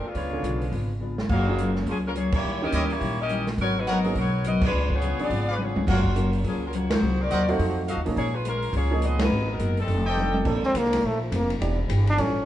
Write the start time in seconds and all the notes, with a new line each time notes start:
0.03 G#3 B3 D4 F4, muted upright bass stroke
0.15 C#2 C#3 B3 D4 F4 B4 C#5, kick, open hi-hat
0.33 C#3 D3 B3 F4
0.43 B1 C#3 B3 D4 F4, closed hi-hat
0.62 open hi-hat
0.71 G#1 C#3 B3 D4 F4, kick, open hi-hat
1.00 C#3 B3 D4 F4
1.18 snare
1.29 F#1 C#3 F#3 G#3 A#3 F4 F#4 G#4 A#4 F5, kick, crash
1.48 F#3 A#3 C#4 F4 G#4
1.58 F#3 A#3 F4 G#4, closed hi-hat
1.76 snare
1.86 C#2 F3 F#3 A#3 C#4 F4 G#4, kick, open hi-hat
2.07 G#3 C#4 F4 A#4
2.14 F#3 A#3 F4 G#4 C#5, closed hi-hat
2.32 A#3 E4 G4 C#5, kick, crash
2.43 D#2 D#3 G3 C#4 E4
2.62 E3 A#3 C#4 D#4 G4 A#4 D#5
2.72 D2 D#3 G3 C#4 E4 G4 C#5 D#5, closed hi-hat
2.90 A#3 E4 G4 C#5, open hi-hat
3.00 A#1 D#3 G3 C#4 E4, kick, open hi-hat
3.21 C#4 G4 A#4 D#5
3.29 D#3 G3 C#4 E4, closed hi-hat
3.47 snare, open hi-hat
3.58 G#1 G#2 F#3 B3 C#4 F#4 A#4 C#5, kick, open hi-hat
3.78 F#3 A#3 D#4 B4
3.86 G#2 F#3 B3 C#4 A#4 B4 C#5 F#5, closed hi-hat
3.91 F#3 B3 D#4 A#4
4.04 F#3 A#3 B3 C#4 G#4, open hi-hat
4.15 B1 G#2 F#3 B3 C#4, kick, open hi-hat
4.19 B3 F#4 A#4 C#5
4.44 G#2 F#3 B3 C#4 F#4 A#4 D#5, closed hi-hat
4.62 D4, kick, crash
4.66 G#3 F4 B4
4.72 C#2 C#3 F3 B3
4.76 D4
4.90 B3 F4 G#4 C#5, kick
5.02 C#3 F3 B3 D4, closed hi-hat
5.19 F3 B3 C#4 D4 G#4 D5, muted upright bass stroke, open hi-hat
5.23 B3 F4 G#4
5.30 G#1 C#3 F3 B3 D4, kick, open hi-hat
5.48 B3 F4 G#4 B4 C#5 D5 F5
5.56 C#3 B4, high tom
5.61 F3 B3 D4 F4 G#4 C#5
5.76 C#2, high tom
5.87 F#1 F#2 C#3 F3 A#3 C#4 F4 F#4 A#4 C#5 F5 F#5, kick, snare, crash
6.05 kick
6.16 F#2 F3 F#3 A#3 C#4 F4 A#4, closed hi-hat
6.33 open hi-hat
6.44 C#2 F#2 F3 A#3 C#4 G#4, kick, open hi-hat
6.65 F#3 C#4 F4 A#4
6.73 F#2 F3 A#3 C#4 F4 F#4 C#5, closed hi-hat
6.90 A#3 D#4 F#4 C5, snare, ride
7.02 C2 C3 F#3 A#3 D#4
7.21 C4 F#4 A#4 D5
7.30 D#2 C3 F#3 A#3 D#4 A#4 C5 D#5 F#5, closed hi-hat
7.48 A3 C4 D#4 F4 F#4 C5, open hi-hat
7.59 F2 F3 A3 D#4 F#4, kick, open hi-hat
7.87 F3 A3 D#4 F#4 A4 D#5 F5, closed hi-hat
7.97 D#2
8.05 B1 F3 G#3 A#3 C#4 D#4, open hi-hat
8.15 A#1 A#2 F3 G#3 A#3 C#4 F4 G#4 C#5, kick, open hi-hat
8.35 G#3 C#4 F4 B4
8.44 A#2 F3 G#3 C#4 F4 A#4, closed hi-hat
8.63 open hi-hat
8.73 C#2 A#2 F3 G#3 A#3 C#4 F4 G#4 C#5, kick, open hi-hat
8.91 F3 G#3 A#3 C#4 G#4
9.02 A#2 F3 G#3 B3 C#4 F4 G#4 D#5, closed hi-hat
9.19 F#3 A#3 D#4 B4, snare, ride
9.30 G#1 G#3 B3 F#4 A#4
9.50 F#3 B3 D#4 A#4
9.59 F#1 G#3 B3 F#4 A#4, closed hi-hat
9.77 G3 C4 D#4 A4, open hi-hat
9.87 F1 F2 D#3 A3 D4, kick, open hi-hat
10.05 A3 D#4 G4 A4 C5 D5 D#5 G5
10.17 F2 D#3 G3 A3 C4 D4 D#4 A4, high tom
10.34 high tom
10.45 A#1 F3 A#3 C4 D4 A4 C5, kick, crash
10.62 C4, muted upright bass stroke, snare
10.74 C2 A#3 D4 A4 C5, kick, hi-hat pedal, ride
10.85 snare
10.93 snare, ride
11.02 A#1 A3 A#3 D4 A4 C5, kick
11.23 F3
11.32 F1 A#3 D4 A4 C5, kick, hi-hat pedal, ride
11.50 ride
11.60 E1 E3 G3 B3 D4 G4, kick, ride
11.88 G1 E3 B3 D4 G4, kick, hi-hat pedal, ride
12.07 D4, ride
12.17 A1 A2 E3 G3 A3 C#4 F4, kick, ride
12.21 C#4